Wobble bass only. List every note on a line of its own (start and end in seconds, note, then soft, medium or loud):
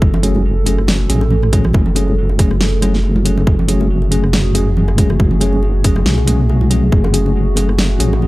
0.02 0.87 F#1 loud
0.88 1.08 F#1 medium
1.10 1.73 A1 medium
1.74 3.46 F#1 loud
3.47 5.19 F#1 loud
5.20 6.05 F#1 loud
6.06 6.91 B1 medium
6.92 7.77 F#1 loud
7.79 7.99 F#1 medium
8.00 8.27 A1 loud